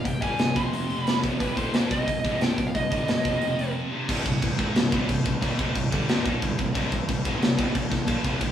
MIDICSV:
0, 0, Header, 1, 5, 480
1, 0, Start_track
1, 0, Key_signature, -3, "minor"
1, 0, Tempo, 336511
1, 66, Time_signature, 4, 2, 24, 8
1, 6306, Tempo, 332594
1, 12220, End_track
2, 0, Start_track
2, 0, Title_t, "Lead electric guitar"
2, 0, Program_c, 0, 29
2, 75, Note_on_c, 0, 79, 91
2, 307, Note_off_c, 0, 79, 0
2, 313, Note_on_c, 0, 80, 103
2, 804, Note_on_c, 0, 84, 96
2, 806, Note_off_c, 0, 80, 0
2, 1431, Note_off_c, 0, 84, 0
2, 1431, Note_on_c, 0, 83, 96
2, 1702, Note_off_c, 0, 83, 0
2, 2010, Note_on_c, 0, 71, 93
2, 2238, Note_off_c, 0, 71, 0
2, 2238, Note_on_c, 0, 72, 91
2, 2730, Note_off_c, 0, 72, 0
2, 2731, Note_on_c, 0, 75, 92
2, 3442, Note_on_c, 0, 79, 86
2, 3464, Note_off_c, 0, 75, 0
2, 3806, Note_on_c, 0, 77, 92
2, 3809, Note_off_c, 0, 79, 0
2, 3923, Note_off_c, 0, 77, 0
2, 3930, Note_on_c, 0, 75, 89
2, 5302, Note_off_c, 0, 75, 0
2, 12220, End_track
3, 0, Start_track
3, 0, Title_t, "Distorted electric guitar"
3, 0, Program_c, 1, 30
3, 65, Note_on_c, 1, 36, 56
3, 70, Note_on_c, 1, 43, 67
3, 258, Note_off_c, 1, 36, 0
3, 261, Note_off_c, 1, 43, 0
3, 301, Note_on_c, 1, 43, 82
3, 307, Note_on_c, 1, 50, 98
3, 318, Note_on_c, 1, 55, 106
3, 528, Note_off_c, 1, 43, 0
3, 539, Note_off_c, 1, 50, 0
3, 542, Note_on_c, 1, 36, 53
3, 545, Note_on_c, 1, 43, 60
3, 546, Note_off_c, 1, 55, 0
3, 737, Note_off_c, 1, 36, 0
3, 739, Note_off_c, 1, 43, 0
3, 789, Note_on_c, 1, 41, 93
3, 799, Note_on_c, 1, 48, 90
3, 806, Note_on_c, 1, 53, 99
3, 1739, Note_off_c, 1, 41, 0
3, 1744, Note_off_c, 1, 48, 0
3, 1745, Note_on_c, 1, 36, 90
3, 1753, Note_off_c, 1, 53, 0
3, 1756, Note_on_c, 1, 43, 90
3, 1761, Note_on_c, 1, 48, 95
3, 1972, Note_off_c, 1, 36, 0
3, 1981, Note_off_c, 1, 43, 0
3, 1990, Note_off_c, 1, 48, 0
3, 1990, Note_on_c, 1, 36, 91
3, 1998, Note_on_c, 1, 43, 85
3, 2007, Note_on_c, 1, 48, 95
3, 2224, Note_off_c, 1, 36, 0
3, 2228, Note_off_c, 1, 43, 0
3, 2232, Note_off_c, 1, 48, 0
3, 2232, Note_on_c, 1, 38, 100
3, 2242, Note_on_c, 1, 45, 93
3, 2248, Note_on_c, 1, 50, 99
3, 2456, Note_off_c, 1, 38, 0
3, 2462, Note_on_c, 1, 39, 73
3, 2465, Note_off_c, 1, 45, 0
3, 2471, Note_on_c, 1, 46, 84
3, 2473, Note_off_c, 1, 50, 0
3, 2481, Note_on_c, 1, 51, 92
3, 2700, Note_off_c, 1, 39, 0
3, 2705, Note_off_c, 1, 46, 0
3, 2710, Note_off_c, 1, 51, 0
3, 2712, Note_on_c, 1, 48, 100
3, 2719, Note_on_c, 1, 55, 100
3, 2725, Note_on_c, 1, 60, 101
3, 2945, Note_off_c, 1, 48, 0
3, 2949, Note_off_c, 1, 55, 0
3, 2952, Note_off_c, 1, 60, 0
3, 2957, Note_on_c, 1, 36, 68
3, 2964, Note_on_c, 1, 43, 74
3, 3147, Note_off_c, 1, 36, 0
3, 3151, Note_off_c, 1, 43, 0
3, 3194, Note_on_c, 1, 36, 83
3, 3208, Note_on_c, 1, 43, 94
3, 3209, Note_on_c, 1, 48, 104
3, 3663, Note_off_c, 1, 36, 0
3, 3667, Note_off_c, 1, 43, 0
3, 3674, Note_off_c, 1, 48, 0
3, 3680, Note_on_c, 1, 36, 62
3, 3684, Note_on_c, 1, 43, 73
3, 3869, Note_off_c, 1, 36, 0
3, 3871, Note_off_c, 1, 43, 0
3, 3919, Note_on_c, 1, 36, 62
3, 3923, Note_on_c, 1, 43, 65
3, 4108, Note_off_c, 1, 36, 0
3, 4110, Note_off_c, 1, 43, 0
3, 4140, Note_on_c, 1, 43, 86
3, 4154, Note_on_c, 1, 50, 85
3, 4161, Note_on_c, 1, 55, 106
3, 4380, Note_off_c, 1, 43, 0
3, 4387, Note_off_c, 1, 50, 0
3, 4390, Note_off_c, 1, 55, 0
3, 4391, Note_on_c, 1, 36, 53
3, 4396, Note_on_c, 1, 43, 63
3, 4584, Note_off_c, 1, 36, 0
3, 4587, Note_off_c, 1, 43, 0
3, 4625, Note_on_c, 1, 41, 98
3, 4630, Note_on_c, 1, 48, 90
3, 4641, Note_on_c, 1, 53, 102
3, 5571, Note_off_c, 1, 41, 0
3, 5577, Note_off_c, 1, 48, 0
3, 5577, Note_on_c, 1, 36, 81
3, 5584, Note_on_c, 1, 43, 79
3, 5587, Note_off_c, 1, 53, 0
3, 5594, Note_on_c, 1, 48, 99
3, 5802, Note_off_c, 1, 36, 0
3, 5813, Note_off_c, 1, 43, 0
3, 5818, Note_off_c, 1, 48, 0
3, 5820, Note_on_c, 1, 36, 97
3, 5830, Note_on_c, 1, 43, 112
3, 5835, Note_on_c, 1, 48, 108
3, 6051, Note_off_c, 1, 36, 0
3, 6054, Note_off_c, 1, 43, 0
3, 6063, Note_off_c, 1, 48, 0
3, 6068, Note_on_c, 1, 36, 72
3, 6071, Note_on_c, 1, 43, 82
3, 6259, Note_off_c, 1, 36, 0
3, 6260, Note_off_c, 1, 43, 0
3, 6306, Note_on_c, 1, 36, 63
3, 6307, Note_on_c, 1, 43, 71
3, 6499, Note_off_c, 1, 36, 0
3, 6499, Note_off_c, 1, 43, 0
3, 6532, Note_on_c, 1, 44, 104
3, 6536, Note_on_c, 1, 51, 104
3, 6548, Note_on_c, 1, 56, 113
3, 6773, Note_off_c, 1, 44, 0
3, 6775, Note_off_c, 1, 51, 0
3, 6781, Note_off_c, 1, 56, 0
3, 6784, Note_on_c, 1, 36, 77
3, 6789, Note_on_c, 1, 43, 71
3, 6979, Note_off_c, 1, 36, 0
3, 6981, Note_off_c, 1, 43, 0
3, 7012, Note_on_c, 1, 36, 93
3, 7024, Note_on_c, 1, 43, 97
3, 7031, Note_on_c, 1, 48, 105
3, 7240, Note_off_c, 1, 36, 0
3, 7247, Note_off_c, 1, 43, 0
3, 7258, Note_on_c, 1, 36, 63
3, 7263, Note_off_c, 1, 48, 0
3, 7264, Note_on_c, 1, 43, 76
3, 7456, Note_off_c, 1, 36, 0
3, 7459, Note_off_c, 1, 43, 0
3, 7503, Note_on_c, 1, 36, 72
3, 7507, Note_on_c, 1, 43, 79
3, 7699, Note_off_c, 1, 36, 0
3, 7701, Note_off_c, 1, 43, 0
3, 7734, Note_on_c, 1, 46, 107
3, 7745, Note_on_c, 1, 53, 101
3, 7751, Note_on_c, 1, 58, 103
3, 7975, Note_off_c, 1, 46, 0
3, 7977, Note_off_c, 1, 53, 0
3, 7980, Note_on_c, 1, 41, 94
3, 7983, Note_off_c, 1, 58, 0
3, 7991, Note_on_c, 1, 48, 104
3, 7994, Note_on_c, 1, 53, 113
3, 8213, Note_off_c, 1, 41, 0
3, 8219, Note_off_c, 1, 48, 0
3, 8219, Note_on_c, 1, 36, 64
3, 8225, Note_off_c, 1, 53, 0
3, 8225, Note_on_c, 1, 43, 69
3, 8417, Note_off_c, 1, 36, 0
3, 8420, Note_off_c, 1, 43, 0
3, 8464, Note_on_c, 1, 43, 106
3, 8472, Note_on_c, 1, 50, 102
3, 8479, Note_on_c, 1, 55, 117
3, 8697, Note_off_c, 1, 43, 0
3, 8704, Note_off_c, 1, 50, 0
3, 8705, Note_on_c, 1, 36, 107
3, 8708, Note_off_c, 1, 55, 0
3, 8714, Note_on_c, 1, 43, 115
3, 8723, Note_on_c, 1, 48, 114
3, 8937, Note_off_c, 1, 36, 0
3, 8942, Note_on_c, 1, 39, 101
3, 8945, Note_off_c, 1, 43, 0
3, 8950, Note_off_c, 1, 48, 0
3, 8952, Note_on_c, 1, 46, 110
3, 8957, Note_on_c, 1, 51, 108
3, 9172, Note_off_c, 1, 39, 0
3, 9177, Note_on_c, 1, 36, 65
3, 9179, Note_off_c, 1, 46, 0
3, 9184, Note_on_c, 1, 43, 71
3, 9187, Note_off_c, 1, 51, 0
3, 9376, Note_off_c, 1, 36, 0
3, 9379, Note_off_c, 1, 43, 0
3, 9422, Note_on_c, 1, 36, 74
3, 9424, Note_on_c, 1, 43, 70
3, 9618, Note_off_c, 1, 36, 0
3, 9619, Note_off_c, 1, 43, 0
3, 9656, Note_on_c, 1, 36, 106
3, 9667, Note_on_c, 1, 43, 105
3, 9676, Note_on_c, 1, 48, 111
3, 9887, Note_off_c, 1, 36, 0
3, 9893, Note_off_c, 1, 43, 0
3, 9905, Note_on_c, 1, 36, 69
3, 9906, Note_off_c, 1, 48, 0
3, 9910, Note_on_c, 1, 43, 85
3, 10099, Note_off_c, 1, 36, 0
3, 10102, Note_off_c, 1, 43, 0
3, 10150, Note_on_c, 1, 36, 66
3, 10154, Note_on_c, 1, 43, 66
3, 10341, Note_off_c, 1, 36, 0
3, 10344, Note_off_c, 1, 43, 0
3, 10387, Note_on_c, 1, 44, 101
3, 10392, Note_on_c, 1, 51, 108
3, 10404, Note_on_c, 1, 56, 104
3, 10613, Note_off_c, 1, 44, 0
3, 10616, Note_off_c, 1, 51, 0
3, 10618, Note_on_c, 1, 36, 75
3, 10622, Note_on_c, 1, 43, 82
3, 10629, Note_off_c, 1, 56, 0
3, 10815, Note_off_c, 1, 36, 0
3, 10817, Note_off_c, 1, 43, 0
3, 10852, Note_on_c, 1, 36, 99
3, 10859, Note_on_c, 1, 43, 95
3, 10867, Note_on_c, 1, 48, 106
3, 11081, Note_off_c, 1, 36, 0
3, 11084, Note_off_c, 1, 43, 0
3, 11099, Note_on_c, 1, 36, 68
3, 11100, Note_off_c, 1, 48, 0
3, 11101, Note_on_c, 1, 43, 74
3, 11295, Note_off_c, 1, 36, 0
3, 11296, Note_off_c, 1, 43, 0
3, 11332, Note_on_c, 1, 36, 72
3, 11335, Note_on_c, 1, 43, 71
3, 11531, Note_off_c, 1, 36, 0
3, 11533, Note_off_c, 1, 43, 0
3, 11566, Note_on_c, 1, 46, 102
3, 11574, Note_on_c, 1, 53, 101
3, 11578, Note_on_c, 1, 58, 111
3, 11809, Note_off_c, 1, 46, 0
3, 11813, Note_off_c, 1, 53, 0
3, 11815, Note_off_c, 1, 58, 0
3, 11821, Note_on_c, 1, 41, 103
3, 11828, Note_on_c, 1, 48, 105
3, 11835, Note_on_c, 1, 53, 111
3, 12053, Note_off_c, 1, 41, 0
3, 12059, Note_off_c, 1, 48, 0
3, 12059, Note_on_c, 1, 36, 65
3, 12063, Note_off_c, 1, 53, 0
3, 12066, Note_on_c, 1, 43, 73
3, 12220, Note_off_c, 1, 36, 0
3, 12220, Note_off_c, 1, 43, 0
3, 12220, End_track
4, 0, Start_track
4, 0, Title_t, "Picked electric bass"
4, 0, Program_c, 2, 34
4, 72, Note_on_c, 2, 24, 71
4, 293, Note_off_c, 2, 24, 0
4, 313, Note_on_c, 2, 31, 92
4, 521, Note_off_c, 2, 31, 0
4, 530, Note_on_c, 2, 24, 77
4, 762, Note_off_c, 2, 24, 0
4, 797, Note_on_c, 2, 29, 81
4, 1698, Note_off_c, 2, 29, 0
4, 1765, Note_on_c, 2, 24, 87
4, 1982, Note_off_c, 2, 24, 0
4, 2004, Note_on_c, 2, 24, 93
4, 2222, Note_off_c, 2, 24, 0
4, 2237, Note_on_c, 2, 26, 84
4, 2458, Note_off_c, 2, 26, 0
4, 2477, Note_on_c, 2, 27, 84
4, 2698, Note_off_c, 2, 27, 0
4, 2722, Note_on_c, 2, 36, 85
4, 2941, Note_off_c, 2, 36, 0
4, 2958, Note_on_c, 2, 24, 78
4, 3179, Note_off_c, 2, 24, 0
4, 3198, Note_on_c, 2, 24, 84
4, 3643, Note_off_c, 2, 24, 0
4, 3679, Note_on_c, 2, 24, 68
4, 3900, Note_off_c, 2, 24, 0
4, 3927, Note_on_c, 2, 24, 78
4, 4144, Note_off_c, 2, 24, 0
4, 4161, Note_on_c, 2, 31, 84
4, 4381, Note_off_c, 2, 31, 0
4, 4417, Note_on_c, 2, 24, 70
4, 4629, Note_off_c, 2, 24, 0
4, 4637, Note_on_c, 2, 29, 86
4, 5303, Note_off_c, 2, 29, 0
4, 5830, Note_on_c, 2, 24, 88
4, 6051, Note_off_c, 2, 24, 0
4, 6072, Note_on_c, 2, 24, 79
4, 6292, Note_off_c, 2, 24, 0
4, 6317, Note_on_c, 2, 24, 85
4, 6536, Note_off_c, 2, 24, 0
4, 6542, Note_on_c, 2, 32, 95
4, 6769, Note_off_c, 2, 32, 0
4, 6780, Note_on_c, 2, 24, 79
4, 7008, Note_off_c, 2, 24, 0
4, 7029, Note_on_c, 2, 24, 90
4, 7253, Note_off_c, 2, 24, 0
4, 7274, Note_on_c, 2, 24, 89
4, 7495, Note_off_c, 2, 24, 0
4, 7516, Note_on_c, 2, 24, 83
4, 7737, Note_off_c, 2, 24, 0
4, 7761, Note_on_c, 2, 34, 88
4, 7979, Note_off_c, 2, 34, 0
4, 7997, Note_on_c, 2, 29, 96
4, 8217, Note_off_c, 2, 29, 0
4, 8231, Note_on_c, 2, 24, 84
4, 8454, Note_off_c, 2, 24, 0
4, 8475, Note_on_c, 2, 31, 97
4, 8688, Note_off_c, 2, 31, 0
4, 8697, Note_on_c, 2, 24, 97
4, 8926, Note_off_c, 2, 24, 0
4, 8954, Note_on_c, 2, 27, 93
4, 9176, Note_off_c, 2, 27, 0
4, 9200, Note_on_c, 2, 24, 87
4, 9419, Note_off_c, 2, 24, 0
4, 9435, Note_on_c, 2, 24, 79
4, 9656, Note_off_c, 2, 24, 0
4, 9673, Note_on_c, 2, 24, 98
4, 9895, Note_off_c, 2, 24, 0
4, 9916, Note_on_c, 2, 24, 83
4, 10136, Note_off_c, 2, 24, 0
4, 10152, Note_on_c, 2, 24, 87
4, 10374, Note_off_c, 2, 24, 0
4, 10394, Note_on_c, 2, 32, 105
4, 10606, Note_off_c, 2, 32, 0
4, 10615, Note_on_c, 2, 24, 81
4, 10844, Note_off_c, 2, 24, 0
4, 10875, Note_on_c, 2, 24, 92
4, 11095, Note_off_c, 2, 24, 0
4, 11111, Note_on_c, 2, 24, 78
4, 11332, Note_off_c, 2, 24, 0
4, 11350, Note_on_c, 2, 24, 78
4, 11572, Note_off_c, 2, 24, 0
4, 11580, Note_on_c, 2, 34, 97
4, 11806, Note_off_c, 2, 34, 0
4, 11821, Note_on_c, 2, 29, 99
4, 12046, Note_off_c, 2, 29, 0
4, 12066, Note_on_c, 2, 24, 86
4, 12220, Note_off_c, 2, 24, 0
4, 12220, End_track
5, 0, Start_track
5, 0, Title_t, "Drums"
5, 76, Note_on_c, 9, 36, 80
5, 76, Note_on_c, 9, 46, 62
5, 218, Note_off_c, 9, 36, 0
5, 219, Note_off_c, 9, 46, 0
5, 316, Note_on_c, 9, 36, 97
5, 318, Note_on_c, 9, 46, 46
5, 458, Note_off_c, 9, 36, 0
5, 460, Note_off_c, 9, 46, 0
5, 554, Note_on_c, 9, 46, 67
5, 566, Note_on_c, 9, 38, 107
5, 697, Note_off_c, 9, 46, 0
5, 708, Note_off_c, 9, 38, 0
5, 799, Note_on_c, 9, 36, 98
5, 799, Note_on_c, 9, 46, 42
5, 941, Note_off_c, 9, 36, 0
5, 941, Note_off_c, 9, 46, 0
5, 1047, Note_on_c, 9, 46, 57
5, 1189, Note_off_c, 9, 46, 0
5, 1288, Note_on_c, 9, 46, 44
5, 1430, Note_off_c, 9, 46, 0
5, 1526, Note_on_c, 9, 46, 60
5, 1538, Note_on_c, 9, 38, 100
5, 1669, Note_off_c, 9, 46, 0
5, 1680, Note_off_c, 9, 38, 0
5, 1763, Note_on_c, 9, 36, 95
5, 1772, Note_on_c, 9, 46, 45
5, 1906, Note_off_c, 9, 36, 0
5, 1915, Note_off_c, 9, 46, 0
5, 2002, Note_on_c, 9, 36, 91
5, 2008, Note_on_c, 9, 46, 64
5, 2145, Note_off_c, 9, 36, 0
5, 2150, Note_off_c, 9, 46, 0
5, 2241, Note_on_c, 9, 36, 95
5, 2245, Note_on_c, 9, 46, 54
5, 2384, Note_off_c, 9, 36, 0
5, 2388, Note_off_c, 9, 46, 0
5, 2478, Note_on_c, 9, 46, 61
5, 2490, Note_on_c, 9, 38, 98
5, 2621, Note_off_c, 9, 46, 0
5, 2632, Note_off_c, 9, 38, 0
5, 2724, Note_on_c, 9, 36, 102
5, 2729, Note_on_c, 9, 46, 47
5, 2867, Note_off_c, 9, 36, 0
5, 2872, Note_off_c, 9, 46, 0
5, 2964, Note_on_c, 9, 36, 77
5, 2967, Note_on_c, 9, 46, 65
5, 3106, Note_off_c, 9, 36, 0
5, 3110, Note_off_c, 9, 46, 0
5, 3204, Note_on_c, 9, 36, 89
5, 3211, Note_on_c, 9, 46, 49
5, 3346, Note_off_c, 9, 36, 0
5, 3354, Note_off_c, 9, 46, 0
5, 3441, Note_on_c, 9, 46, 62
5, 3453, Note_on_c, 9, 38, 97
5, 3584, Note_off_c, 9, 46, 0
5, 3596, Note_off_c, 9, 38, 0
5, 3681, Note_on_c, 9, 36, 76
5, 3684, Note_on_c, 9, 46, 49
5, 3824, Note_off_c, 9, 36, 0
5, 3826, Note_off_c, 9, 46, 0
5, 3922, Note_on_c, 9, 36, 75
5, 3923, Note_on_c, 9, 46, 57
5, 4064, Note_off_c, 9, 36, 0
5, 4065, Note_off_c, 9, 46, 0
5, 4162, Note_on_c, 9, 36, 102
5, 4166, Note_on_c, 9, 46, 46
5, 4304, Note_off_c, 9, 36, 0
5, 4309, Note_off_c, 9, 46, 0
5, 4397, Note_on_c, 9, 46, 66
5, 4409, Note_on_c, 9, 38, 103
5, 4540, Note_off_c, 9, 46, 0
5, 4551, Note_off_c, 9, 38, 0
5, 4637, Note_on_c, 9, 36, 100
5, 4642, Note_on_c, 9, 46, 42
5, 4780, Note_off_c, 9, 36, 0
5, 4785, Note_off_c, 9, 46, 0
5, 4870, Note_on_c, 9, 46, 56
5, 5013, Note_off_c, 9, 46, 0
5, 5120, Note_on_c, 9, 46, 47
5, 5263, Note_off_c, 9, 46, 0
5, 5831, Note_on_c, 9, 49, 115
5, 5831, Note_on_c, 9, 57, 84
5, 5833, Note_on_c, 9, 36, 103
5, 5974, Note_off_c, 9, 49, 0
5, 5974, Note_off_c, 9, 57, 0
5, 5976, Note_off_c, 9, 36, 0
5, 6073, Note_on_c, 9, 36, 95
5, 6076, Note_on_c, 9, 57, 63
5, 6216, Note_off_c, 9, 36, 0
5, 6219, Note_off_c, 9, 57, 0
5, 6311, Note_on_c, 9, 36, 91
5, 6316, Note_on_c, 9, 57, 93
5, 6455, Note_off_c, 9, 36, 0
5, 6460, Note_off_c, 9, 57, 0
5, 6549, Note_on_c, 9, 36, 106
5, 6551, Note_on_c, 9, 57, 62
5, 6693, Note_off_c, 9, 36, 0
5, 6696, Note_off_c, 9, 57, 0
5, 6789, Note_on_c, 9, 57, 89
5, 6800, Note_on_c, 9, 38, 113
5, 6933, Note_off_c, 9, 57, 0
5, 6945, Note_off_c, 9, 38, 0
5, 7030, Note_on_c, 9, 36, 114
5, 7032, Note_on_c, 9, 57, 67
5, 7175, Note_off_c, 9, 36, 0
5, 7177, Note_off_c, 9, 57, 0
5, 7273, Note_on_c, 9, 36, 89
5, 7275, Note_on_c, 9, 57, 92
5, 7417, Note_off_c, 9, 36, 0
5, 7419, Note_off_c, 9, 57, 0
5, 7513, Note_on_c, 9, 36, 103
5, 7513, Note_on_c, 9, 57, 64
5, 7657, Note_off_c, 9, 57, 0
5, 7658, Note_off_c, 9, 36, 0
5, 7754, Note_on_c, 9, 36, 99
5, 7754, Note_on_c, 9, 57, 87
5, 7898, Note_off_c, 9, 57, 0
5, 7899, Note_off_c, 9, 36, 0
5, 7987, Note_on_c, 9, 57, 68
5, 7994, Note_on_c, 9, 36, 105
5, 8131, Note_off_c, 9, 57, 0
5, 8139, Note_off_c, 9, 36, 0
5, 8225, Note_on_c, 9, 57, 89
5, 8232, Note_on_c, 9, 36, 99
5, 8369, Note_off_c, 9, 57, 0
5, 8377, Note_off_c, 9, 36, 0
5, 8473, Note_on_c, 9, 57, 62
5, 8475, Note_on_c, 9, 36, 100
5, 8618, Note_off_c, 9, 57, 0
5, 8620, Note_off_c, 9, 36, 0
5, 8712, Note_on_c, 9, 57, 78
5, 8723, Note_on_c, 9, 38, 121
5, 8856, Note_off_c, 9, 57, 0
5, 8868, Note_off_c, 9, 38, 0
5, 8954, Note_on_c, 9, 36, 105
5, 8955, Note_on_c, 9, 57, 59
5, 9099, Note_off_c, 9, 36, 0
5, 9099, Note_off_c, 9, 57, 0
5, 9196, Note_on_c, 9, 36, 95
5, 9197, Note_on_c, 9, 57, 76
5, 9340, Note_off_c, 9, 36, 0
5, 9342, Note_off_c, 9, 57, 0
5, 9433, Note_on_c, 9, 57, 61
5, 9435, Note_on_c, 9, 36, 103
5, 9577, Note_off_c, 9, 57, 0
5, 9579, Note_off_c, 9, 36, 0
5, 9668, Note_on_c, 9, 57, 78
5, 9672, Note_on_c, 9, 36, 112
5, 9812, Note_off_c, 9, 57, 0
5, 9816, Note_off_c, 9, 36, 0
5, 9914, Note_on_c, 9, 36, 99
5, 9916, Note_on_c, 9, 57, 66
5, 10058, Note_off_c, 9, 36, 0
5, 10060, Note_off_c, 9, 57, 0
5, 10155, Note_on_c, 9, 36, 96
5, 10155, Note_on_c, 9, 57, 87
5, 10299, Note_off_c, 9, 36, 0
5, 10299, Note_off_c, 9, 57, 0
5, 10394, Note_on_c, 9, 36, 114
5, 10400, Note_on_c, 9, 57, 68
5, 10538, Note_off_c, 9, 36, 0
5, 10544, Note_off_c, 9, 57, 0
5, 10639, Note_on_c, 9, 57, 85
5, 10650, Note_on_c, 9, 38, 107
5, 10783, Note_off_c, 9, 57, 0
5, 10795, Note_off_c, 9, 38, 0
5, 10874, Note_on_c, 9, 36, 114
5, 10877, Note_on_c, 9, 57, 72
5, 11019, Note_off_c, 9, 36, 0
5, 11021, Note_off_c, 9, 57, 0
5, 11112, Note_on_c, 9, 36, 92
5, 11116, Note_on_c, 9, 57, 91
5, 11257, Note_off_c, 9, 36, 0
5, 11260, Note_off_c, 9, 57, 0
5, 11350, Note_on_c, 9, 36, 99
5, 11353, Note_on_c, 9, 57, 73
5, 11364, Note_on_c, 9, 38, 34
5, 11494, Note_off_c, 9, 36, 0
5, 11497, Note_off_c, 9, 57, 0
5, 11509, Note_off_c, 9, 38, 0
5, 11575, Note_on_c, 9, 57, 83
5, 11586, Note_on_c, 9, 36, 99
5, 11720, Note_off_c, 9, 57, 0
5, 11731, Note_off_c, 9, 36, 0
5, 11821, Note_on_c, 9, 57, 64
5, 11825, Note_on_c, 9, 36, 101
5, 11966, Note_off_c, 9, 57, 0
5, 11969, Note_off_c, 9, 36, 0
5, 12058, Note_on_c, 9, 57, 85
5, 12065, Note_on_c, 9, 36, 101
5, 12202, Note_off_c, 9, 57, 0
5, 12210, Note_off_c, 9, 36, 0
5, 12220, End_track
0, 0, End_of_file